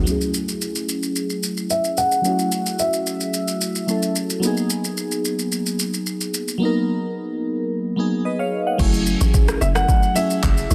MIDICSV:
0, 0, Header, 1, 5, 480
1, 0, Start_track
1, 0, Tempo, 545455
1, 60, Time_signature, 4, 2, 24, 8
1, 9458, End_track
2, 0, Start_track
2, 0, Title_t, "Grand piano"
2, 0, Program_c, 0, 0
2, 1499, Note_on_c, 0, 76, 91
2, 1740, Note_on_c, 0, 78, 122
2, 1747, Note_off_c, 0, 76, 0
2, 2459, Note_on_c, 0, 76, 83
2, 2482, Note_off_c, 0, 78, 0
2, 3624, Note_off_c, 0, 76, 0
2, 8458, Note_on_c, 0, 76, 102
2, 8502, Note_off_c, 0, 76, 0
2, 8581, Note_on_c, 0, 78, 116
2, 8937, Note_on_c, 0, 76, 103
2, 8949, Note_off_c, 0, 78, 0
2, 9458, Note_off_c, 0, 76, 0
2, 9458, End_track
3, 0, Start_track
3, 0, Title_t, "FM electric piano"
3, 0, Program_c, 1, 5
3, 0, Control_c, 1, 64, 127
3, 31, Note_on_c, 1, 54, 73
3, 47, Note_on_c, 1, 57, 68
3, 63, Note_on_c, 1, 61, 67
3, 70, Control_c, 1, 64, 0
3, 78, Note_on_c, 1, 64, 65
3, 94, Note_on_c, 1, 68, 85
3, 207, Control_c, 1, 64, 127
3, 1930, Note_off_c, 1, 54, 0
3, 1938, Note_off_c, 1, 57, 0
3, 1946, Note_off_c, 1, 61, 0
3, 1949, Note_on_c, 1, 54, 63
3, 1954, Note_off_c, 1, 64, 0
3, 1962, Note_off_c, 1, 68, 0
3, 1965, Note_on_c, 1, 57, 58
3, 1981, Note_on_c, 1, 61, 59
3, 1996, Note_on_c, 1, 64, 57
3, 2012, Note_on_c, 1, 66, 72
3, 3376, Note_off_c, 1, 54, 0
3, 3384, Note_off_c, 1, 57, 0
3, 3392, Note_off_c, 1, 61, 0
3, 3399, Note_off_c, 1, 64, 0
3, 3405, Note_on_c, 1, 54, 55
3, 3408, Note_off_c, 1, 66, 0
3, 3412, Note_on_c, 1, 57, 51
3, 3420, Note_on_c, 1, 61, 52
3, 3429, Note_on_c, 1, 64, 55
3, 3437, Note_on_c, 1, 69, 60
3, 3859, Note_off_c, 1, 54, 0
3, 3869, Note_on_c, 1, 54, 77
3, 3885, Note_on_c, 1, 58, 70
3, 3896, Note_off_c, 1, 57, 0
3, 3900, Note_off_c, 1, 61, 0
3, 3901, Note_on_c, 1, 59, 69
3, 3904, Note_off_c, 1, 64, 0
3, 3908, Note_off_c, 1, 69, 0
3, 3911, Control_c, 1, 64, 0
3, 3916, Note_on_c, 1, 63, 71
3, 3933, Note_on_c, 1, 68, 86
3, 4054, Control_c, 1, 64, 127
3, 5769, Note_off_c, 1, 54, 0
3, 5777, Note_off_c, 1, 58, 0
3, 5785, Note_off_c, 1, 59, 0
3, 5790, Note_on_c, 1, 54, 76
3, 5793, Note_off_c, 1, 63, 0
3, 5801, Note_off_c, 1, 68, 0
3, 5806, Note_on_c, 1, 58, 71
3, 5822, Note_on_c, 1, 59, 69
3, 5837, Note_on_c, 1, 63, 72
3, 5853, Note_on_c, 1, 70, 81
3, 6981, Note_off_c, 1, 54, 0
3, 6989, Note_off_c, 1, 58, 0
3, 6997, Note_off_c, 1, 59, 0
3, 7004, Note_off_c, 1, 63, 0
3, 7007, Note_on_c, 1, 54, 59
3, 7013, Note_off_c, 1, 70, 0
3, 7015, Note_on_c, 1, 58, 51
3, 7023, Note_on_c, 1, 59, 53
3, 7031, Note_on_c, 1, 63, 52
3, 7039, Note_on_c, 1, 68, 63
3, 7262, Note_on_c, 1, 75, 64
3, 7266, Note_on_c, 1, 71, 53
3, 7379, Note_off_c, 1, 75, 0
3, 7382, Note_off_c, 1, 71, 0
3, 7386, Note_on_c, 1, 77, 71
3, 7390, Note_on_c, 1, 73, 62
3, 7613, Note_off_c, 1, 77, 0
3, 7615, Note_off_c, 1, 73, 0
3, 7628, Note_on_c, 1, 78, 66
3, 7633, Note_on_c, 1, 75, 52
3, 7718, Note_off_c, 1, 54, 0
3, 7728, Note_on_c, 1, 54, 94
3, 7737, Note_on_c, 1, 57, 82
3, 7738, Note_off_c, 1, 58, 0
3, 7742, Note_off_c, 1, 59, 0
3, 7745, Note_off_c, 1, 63, 0
3, 7745, Note_on_c, 1, 61, 82
3, 7749, Note_off_c, 1, 68, 0
3, 7751, Control_c, 1, 64, 0
3, 7752, Note_on_c, 1, 64, 82
3, 7760, Note_on_c, 1, 68, 98
3, 7854, Note_off_c, 1, 78, 0
3, 7857, Note_off_c, 1, 75, 0
3, 7910, Control_c, 1, 64, 127
3, 8504, Note_off_c, 1, 54, 0
3, 8508, Note_off_c, 1, 57, 0
3, 8512, Note_off_c, 1, 61, 0
3, 8516, Note_off_c, 1, 64, 0
3, 8520, Note_off_c, 1, 68, 0
3, 8928, Note_on_c, 1, 54, 73
3, 8936, Note_on_c, 1, 57, 66
3, 8943, Note_on_c, 1, 61, 67
3, 8951, Note_on_c, 1, 64, 67
3, 8959, Note_on_c, 1, 68, 80
3, 9458, Note_off_c, 1, 54, 0
3, 9458, Note_off_c, 1, 57, 0
3, 9458, Note_off_c, 1, 61, 0
3, 9458, Note_off_c, 1, 64, 0
3, 9458, Note_off_c, 1, 68, 0
3, 9458, End_track
4, 0, Start_track
4, 0, Title_t, "Log drum bass"
4, 0, Program_c, 2, 39
4, 7740, Note_on_c, 2, 30, 104
4, 8059, Note_off_c, 2, 30, 0
4, 8105, Note_on_c, 2, 33, 91
4, 8415, Note_off_c, 2, 33, 0
4, 8460, Note_on_c, 2, 30, 101
4, 8669, Note_off_c, 2, 30, 0
4, 9182, Note_on_c, 2, 30, 92
4, 9391, Note_off_c, 2, 30, 0
4, 9421, Note_on_c, 2, 33, 96
4, 9458, Note_off_c, 2, 33, 0
4, 9458, End_track
5, 0, Start_track
5, 0, Title_t, "Drums"
5, 61, Note_on_c, 9, 82, 76
5, 149, Note_off_c, 9, 82, 0
5, 185, Note_on_c, 9, 82, 49
5, 273, Note_off_c, 9, 82, 0
5, 299, Note_on_c, 9, 82, 86
5, 387, Note_off_c, 9, 82, 0
5, 428, Note_on_c, 9, 82, 55
5, 516, Note_off_c, 9, 82, 0
5, 541, Note_on_c, 9, 82, 73
5, 629, Note_off_c, 9, 82, 0
5, 665, Note_on_c, 9, 82, 57
5, 753, Note_off_c, 9, 82, 0
5, 782, Note_on_c, 9, 82, 87
5, 870, Note_off_c, 9, 82, 0
5, 905, Note_on_c, 9, 82, 45
5, 993, Note_off_c, 9, 82, 0
5, 1019, Note_on_c, 9, 82, 78
5, 1107, Note_off_c, 9, 82, 0
5, 1143, Note_on_c, 9, 82, 48
5, 1231, Note_off_c, 9, 82, 0
5, 1260, Note_on_c, 9, 82, 76
5, 1348, Note_off_c, 9, 82, 0
5, 1383, Note_on_c, 9, 82, 50
5, 1471, Note_off_c, 9, 82, 0
5, 1497, Note_on_c, 9, 82, 70
5, 1585, Note_off_c, 9, 82, 0
5, 1622, Note_on_c, 9, 82, 48
5, 1710, Note_off_c, 9, 82, 0
5, 1738, Note_on_c, 9, 82, 81
5, 1826, Note_off_c, 9, 82, 0
5, 1863, Note_on_c, 9, 82, 54
5, 1951, Note_off_c, 9, 82, 0
5, 1977, Note_on_c, 9, 82, 72
5, 2065, Note_off_c, 9, 82, 0
5, 2103, Note_on_c, 9, 82, 48
5, 2191, Note_off_c, 9, 82, 0
5, 2216, Note_on_c, 9, 82, 87
5, 2304, Note_off_c, 9, 82, 0
5, 2343, Note_on_c, 9, 82, 55
5, 2431, Note_off_c, 9, 82, 0
5, 2456, Note_on_c, 9, 82, 77
5, 2544, Note_off_c, 9, 82, 0
5, 2581, Note_on_c, 9, 82, 57
5, 2669, Note_off_c, 9, 82, 0
5, 2698, Note_on_c, 9, 82, 85
5, 2786, Note_off_c, 9, 82, 0
5, 2820, Note_on_c, 9, 82, 44
5, 2908, Note_off_c, 9, 82, 0
5, 2937, Note_on_c, 9, 82, 76
5, 3025, Note_off_c, 9, 82, 0
5, 3062, Note_on_c, 9, 82, 51
5, 3150, Note_off_c, 9, 82, 0
5, 3179, Note_on_c, 9, 82, 80
5, 3267, Note_off_c, 9, 82, 0
5, 3304, Note_on_c, 9, 82, 50
5, 3392, Note_off_c, 9, 82, 0
5, 3418, Note_on_c, 9, 82, 68
5, 3506, Note_off_c, 9, 82, 0
5, 3542, Note_on_c, 9, 82, 48
5, 3630, Note_off_c, 9, 82, 0
5, 3658, Note_on_c, 9, 82, 84
5, 3746, Note_off_c, 9, 82, 0
5, 3783, Note_on_c, 9, 82, 55
5, 3871, Note_off_c, 9, 82, 0
5, 3898, Note_on_c, 9, 82, 71
5, 3986, Note_off_c, 9, 82, 0
5, 4022, Note_on_c, 9, 82, 47
5, 4110, Note_off_c, 9, 82, 0
5, 4136, Note_on_c, 9, 82, 87
5, 4224, Note_off_c, 9, 82, 0
5, 4263, Note_on_c, 9, 82, 58
5, 4351, Note_off_c, 9, 82, 0
5, 4377, Note_on_c, 9, 82, 73
5, 4465, Note_off_c, 9, 82, 0
5, 4502, Note_on_c, 9, 82, 56
5, 4590, Note_off_c, 9, 82, 0
5, 4620, Note_on_c, 9, 82, 91
5, 4708, Note_off_c, 9, 82, 0
5, 4743, Note_on_c, 9, 82, 47
5, 4831, Note_off_c, 9, 82, 0
5, 4858, Note_on_c, 9, 82, 74
5, 4946, Note_off_c, 9, 82, 0
5, 4983, Note_on_c, 9, 82, 50
5, 5071, Note_off_c, 9, 82, 0
5, 5099, Note_on_c, 9, 82, 80
5, 5187, Note_off_c, 9, 82, 0
5, 5225, Note_on_c, 9, 82, 52
5, 5313, Note_off_c, 9, 82, 0
5, 5337, Note_on_c, 9, 82, 70
5, 5425, Note_off_c, 9, 82, 0
5, 5464, Note_on_c, 9, 82, 49
5, 5552, Note_off_c, 9, 82, 0
5, 5579, Note_on_c, 9, 82, 83
5, 5667, Note_off_c, 9, 82, 0
5, 5703, Note_on_c, 9, 82, 54
5, 5791, Note_off_c, 9, 82, 0
5, 7739, Note_on_c, 9, 82, 75
5, 7740, Note_on_c, 9, 36, 109
5, 7740, Note_on_c, 9, 49, 91
5, 7827, Note_off_c, 9, 82, 0
5, 7828, Note_off_c, 9, 36, 0
5, 7828, Note_off_c, 9, 49, 0
5, 7864, Note_on_c, 9, 82, 48
5, 7952, Note_off_c, 9, 82, 0
5, 7978, Note_on_c, 9, 82, 90
5, 8066, Note_off_c, 9, 82, 0
5, 8105, Note_on_c, 9, 82, 62
5, 8193, Note_off_c, 9, 82, 0
5, 8220, Note_on_c, 9, 82, 81
5, 8221, Note_on_c, 9, 36, 98
5, 8308, Note_off_c, 9, 82, 0
5, 8309, Note_off_c, 9, 36, 0
5, 8345, Note_on_c, 9, 82, 57
5, 8347, Note_on_c, 9, 37, 90
5, 8433, Note_off_c, 9, 82, 0
5, 8435, Note_off_c, 9, 37, 0
5, 8463, Note_on_c, 9, 82, 94
5, 8551, Note_off_c, 9, 82, 0
5, 8585, Note_on_c, 9, 37, 84
5, 8586, Note_on_c, 9, 82, 47
5, 8673, Note_off_c, 9, 37, 0
5, 8674, Note_off_c, 9, 82, 0
5, 8699, Note_on_c, 9, 36, 112
5, 8701, Note_on_c, 9, 82, 75
5, 8787, Note_off_c, 9, 36, 0
5, 8789, Note_off_c, 9, 82, 0
5, 8825, Note_on_c, 9, 82, 54
5, 8913, Note_off_c, 9, 82, 0
5, 8941, Note_on_c, 9, 82, 82
5, 9029, Note_off_c, 9, 82, 0
5, 9068, Note_on_c, 9, 82, 56
5, 9156, Note_off_c, 9, 82, 0
5, 9181, Note_on_c, 9, 82, 76
5, 9182, Note_on_c, 9, 36, 87
5, 9182, Note_on_c, 9, 39, 88
5, 9269, Note_off_c, 9, 82, 0
5, 9270, Note_off_c, 9, 36, 0
5, 9270, Note_off_c, 9, 39, 0
5, 9306, Note_on_c, 9, 82, 49
5, 9394, Note_off_c, 9, 82, 0
5, 9422, Note_on_c, 9, 82, 85
5, 9458, Note_off_c, 9, 82, 0
5, 9458, End_track
0, 0, End_of_file